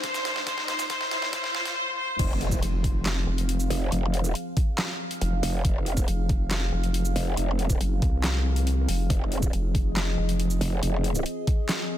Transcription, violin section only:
0.03 0.45 C5 loud
0.47 0.66 C5 loud
0.68 0.88 C5 loud
0.90 1.10 C5 loud
1.11 1.31 C5 loud
1.33 1.53 C5 loud
1.55 1.75 C5 loud
1.76 1.96 C5 loud
1.98 2.18 C5 loud

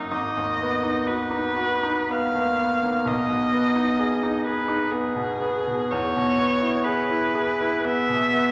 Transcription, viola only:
0.00 0.13 D#4 medium
0.12 1.09 D#5 medium
1.08 2.12 B4 medium
2.11 3.09 F5 medium
3.07 4.45 D#5 medium
4.46 4.93 B4 medium
4.91 5.92 G#4 medium
5.91 6.85 C#5 medium
6.84 7.86 B4 medium
7.85 8.52 E5 medium

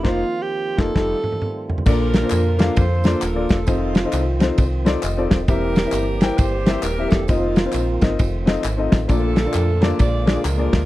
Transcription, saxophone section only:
1.88 2.74 D4 medium
1.88 2.74 F4 medium
1.88 2.74 A#4 loud
2.78 3.64 F4 medium
2.78 3.50 A4 medium
2.78 3.23 C5 loud
3.23 3.51 A#4 loud
3.51 3.68 A4 medium
3.68 4.55 A3 medium
3.68 4.55 C4 medium
3.68 4.55 F4 medium
5.49 6.35 G4 medium
5.49 6.35 A#4 loud
6.38 7.26 G4 medium
6.38 6.84 C5 loud
6.83 7.12 A#4 loud
7.10 7.28 A4 loud
7.29 8.16 A#3 medium
7.29 8.16 C4 medium
7.29 8.19 F4 loud
9.10 9.97 D4 medium
9.10 9.96 F4 medium
9.10 9.96 A4 loud
10.00 10.45 F4 medium
10.00 10.86 G#4 medium
10.00 10.42 D5 loud
10.44 10.86 D4 medium
10.44 10.86 F4 medium
10.44 10.86 A#4 loud

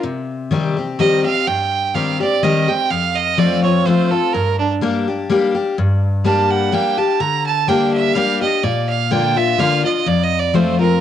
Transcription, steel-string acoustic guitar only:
0.03 0.95 C3 medium
0.51 0.76 D#3 medium
0.51 0.76 G3 medium
0.51 0.76 C4 medium
0.51 0.75 G4 medium
0.77 0.99 C4 medium
0.77 0.98 G4 medium
0.99 1.24 D#3 medium
0.99 1.24 G3 medium
0.99 1.24 C4 medium
0.99 1.23 G4 medium
1.24 1.47 C4 medium
1.24 1.46 G4 medium
1.47 2.38 G2 medium
1.94 2.19 D#3 medium
1.94 2.20 G3 medium
1.94 2.20 C4 medium
1.94 2.19 G4 medium
2.20 2.43 C4 soft
2.20 2.42 G4 medium
2.43 2.67 D#3 medium
2.43 2.68 G3 medium
2.43 2.68 C4 loud
2.43 2.67 G4 loud
2.68 2.91 C4 medium
2.68 2.90 G4 medium
2.90 3.82 F2 medium
3.37 3.62 F3 medium
3.37 3.63 A3 medium
3.37 3.63 C4 loud
3.37 3.62 F4 loud
3.63 3.86 C4 medium
3.63 3.85 F4 medium
3.86 4.11 F3 medium
3.86 4.11 A3 medium
3.86 4.11 C4 medium
3.86 4.10 F4 loud
4.12 4.34 C4 soft
4.12 4.33 F4 medium
4.34 5.25 G2 medium
4.81 5.06 G3 medium
4.81 5.06 A#3 medium
4.81 5.07 D4 medium
4.81 5.06 G4 medium
5.08 5.30 D4 soft
5.08 5.29 G4 medium
5.29 5.54 G3 medium
5.29 5.54 A#3 medium
5.29 5.55 D4 medium
5.29 5.53 G4 loud
5.55 5.77 D4 soft
5.55 5.76 G4 medium
5.78 6.69 G2 medium
6.24 6.70 G3 medium
6.24 6.71 A#3 medium
6.24 6.71 D4 loud
6.24 6.71 G4 medium
6.72 6.97 G3 medium
6.72 6.97 A#3 medium
6.72 6.98 D4 loud
6.72 6.97 G4 loud
6.98 7.20 D4 soft
6.98 7.19 G4 medium
7.20 8.11 D3 medium
7.68 8.14 G3 medium
7.68 8.14 A#3 loud
7.68 8.14 D4 medium
7.68 8.15 G4 loud
8.15 8.40 G3 medium
8.15 8.41 A#3 loud
8.15 8.41 D4 loud
8.15 8.40 G4 loud
8.41 8.64 D4 medium
8.41 8.63 G4 medium
8.63 9.55 A#2 medium
9.11 9.35 D3 medium
9.11 9.36 A#3 medium
9.11 9.36 D4 medium
9.11 9.35 F4 loud
9.36 9.58 D4 soft
9.36 9.58 F4 medium
9.59 9.83 D3 medium
9.59 9.84 A#3 medium
9.59 9.84 D4 loud
9.59 9.83 F4 loud
9.84 10.07 D4 soft
9.84 10.06 F4 medium
10.06 10.97 F2 medium
10.54 10.79 F3 medium
10.54 10.79 A3 loud
10.54 10.79 C4 loud
10.54 10.78 F4 medium
10.79 11.01 C4 medium
10.79 11.01 F4 medium

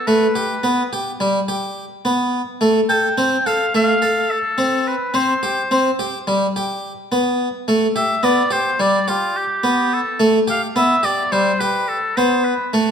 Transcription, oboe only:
0.07 0.92 B4 medium
2.89 3.48 G5 loud
3.46 3.74 F5 medium
3.75 4.33 F5 medium
4.31 4.89 A4 medium
4.88 5.18 B4 medium
5.16 6.00 C5 medium
7.96 8.26 E5 medium
8.24 8.54 D5 medium
8.52 8.82 C5 medium
8.81 9.10 D5 medium
9.09 9.38 F4 medium
9.37 9.95 G4 medium
9.93 10.21 A4 medium
10.50 10.62 F5 medium
10.77 11.06 E5 medium
11.05 11.34 D5 medium
11.32 11.62 C5 medium
11.60 11.90 B4 medium
11.88 12.18 A4 medium
12.17 12.46 C5 medium
12.45 12.73 B4 medium

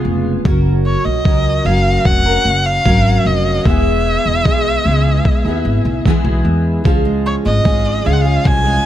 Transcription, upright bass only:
0.05 0.38 F1 medium
0.45 0.94 F#1 loud
1.05 1.22 A#1 medium
1.25 1.58 C#2 medium
1.65 1.98 F#1 medium
2.05 2.38 F1 medium
2.45 2.78 F#1 medium
2.86 3.18 G#1 medium
3.25 3.58 F1 medium
3.66 4.15 E1 medium
4.26 4.42 E1 medium
4.46 4.78 B1 medium
4.85 5.18 C#2 medium
5.45 5.61 D#2 medium
5.65 5.82 G#1 medium
5.85 6.02 B1 medium
6.06 muted upright bass stroke soft
6.25 6.41 B1 medium
6.45 6.86 E2 medium
6.86 7.35 C#2 medium
7.46 7.62 G#1 medium
7.65 7.98 G#1 medium
8.06 8.39 C#2 medium
8.45 8.78 C2 medium

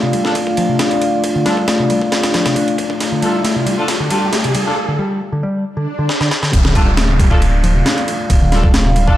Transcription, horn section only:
0.25 0.33 D4 medium
0.25 0.33 F4 medium
0.25 0.33 A4 medium
1.46 1.60 D4 medium
1.46 1.60 F4 medium
1.46 1.60 A4 medium
3.22 3.37 D4 medium
3.22 3.37 F4 medium
3.22 3.37 A4 medium
3.78 3.86 D4 medium
3.78 3.86 F4 medium
3.78 3.86 A4 medium
4.11 4.25 D4 medium
4.11 4.25 F4 medium
4.11 4.25 A4 medium
4.66 4.74 D4 medium
4.66 4.74 F4 medium
4.66 4.74 A4 medium
6.75 6.89 D4 medium
6.75 6.89 F4 medium
6.75 6.89 A4 medium
7.31 7.39 D4 medium
7.31 7.39 F4 medium
7.31 7.39 A4 medium
8.52 8.66 D4 medium
8.52 8.66 F4 medium
8.52 8.66 A4 medium
9.07 9.16 D4 medium
9.07 9.16 F4 medium
9.07 9.16 A4 medium

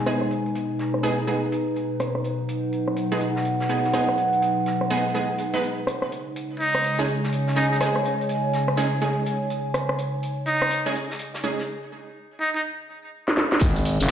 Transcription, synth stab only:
0.06 0.21 G#3 medium
0.06 0.21 B3 medium
0.06 0.21 D#4 medium
0.06 0.21 G#4 loud
1.03 1.18 G#3 medium
1.03 1.18 B3 medium
1.03 1.18 D#4 medium
1.03 1.18 G#4 loud
1.27 1.42 G#3 medium
1.27 1.42 B3 medium
1.27 1.42 D#4 medium
1.27 1.42 G#4 medium
3.12 3.21 G#3 medium
3.12 3.21 B3 medium
3.12 3.21 D#4 medium
3.12 3.21 G#4 medium
3.69 3.84 G#3 medium
3.69 3.84 B3 medium
3.69 3.84 D#4 medium
3.69 3.84 G#4 medium
3.93 4.08 G#3 medium
3.93 4.08 B3 medium
3.93 4.08 D#4 medium
3.93 4.08 G#4 loud
4.90 5.05 G#3 medium
4.90 5.05 B3 medium
4.90 5.05 D#4 medium
4.90 5.05 G#4 loud
5.14 5.29 G#3 medium
5.14 5.29 B3 medium
5.14 5.29 D#4 medium
5.14 5.29 G#4 medium
5.54 5.62 G#3 medium
5.54 5.62 B3 medium
5.54 5.62 D#4 medium
5.54 5.62 B4 loud
6.99 7.08 G#3 medium
6.99 7.08 C#4 medium
6.99 7.08 D#4 medium
6.99 7.08 G#4 medium
7.56 7.71 G#3 medium
7.56 7.71 C#4 medium
7.56 7.71 D#4 medium
7.56 7.71 G#4 medium
7.80 7.95 G#3 medium
7.80 7.95 C#4 medium
7.80 7.95 D#4 medium
7.80 7.95 G#4 loud
8.77 8.92 G#3 medium
8.77 8.92 C#4 medium
8.77 8.92 D#4 medium
8.77 8.92 G#4 loud
9.02 9.16 G#3 medium
9.02 9.16 C#4 medium
9.02 9.16 D#4 medium
9.02 9.16 G#4 medium
10.86 10.95 G#3 medium
10.86 10.95 C#4 medium
10.86 10.95 D#4 medium
10.86 10.95 G#4 medium
11.43 11.58 G#3 medium
11.43 11.58 C#4 medium
11.43 11.58 D#4 medium
11.43 11.58 G#4 medium

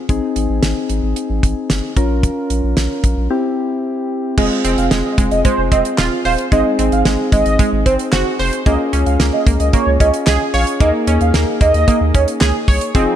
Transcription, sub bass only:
0.09 0.20 G#1 loud
0.36 0.47 G#1 loud
0.49 0.60 G#1 loud
0.63 0.74 G#1 loud
0.90 1.01 G#1 loud
1.03 1.14 G#1 medium
1.30 1.41 G#1 medium
1.43 1.54 G#1 loud
1.70 1.81 G1 medium
1.97 2.30 A#1 loud
2.50 2.61 A#1 medium
2.64 2.75 A#1 medium
2.77 2.88 A#1 loud
3.04 3.15 A#1 loud
3.17 3.28 A#1 medium
4.38 4.49 F1 loud
4.64 4.76 F1 loud
4.78 4.89 F1 loud
4.91 5.02 F1 loud
5.18 5.29 F1 loud
5.31 5.42 F1 loud
5.58 5.69 F1 loud
5.72 5.83 F1 loud
5.98 6.10 D#1 medium
6.25 6.36 D#1 loud
6.52 6.63 G#1 loud
6.79 6.90 G#1 loud
6.92 7.03 G#1 loud
7.05 7.17 G#1 loud
7.32 7.43 G#1 loud
7.46 7.57 G#1 loud
7.73 7.84 G#1 loud
7.86 7.97 G#1 loud
8.13 8.24 F#1 medium
8.39 8.51 F1 medium
8.66 8.77 C#2 loud
8.93 9.04 C#2 loud
9.06 9.17 C#2 loud
9.20 9.31 C#2 loud
9.47 9.58 C#2 loud
9.60 9.71 C#2 loud
9.87 9.98 C#2 loud
10.00 10.11 C#2 loud
10.27 10.38 C2 loud
10.54 10.65 A#1 medium
10.81 10.92 D#2 loud
11.07 11.18 D#2 loud
11.21 11.32 D#2 medium
11.34 11.45 D#2 loud
11.61 11.72 D#2 loud
11.74 11.85 D#2 loud
12.01 12.12 D#2 loud
12.15 12.26 D#2 loud
12.41 12.52 C#2 medium
12.68 12.79 C2 loud
12.95 13.06 F1 loud

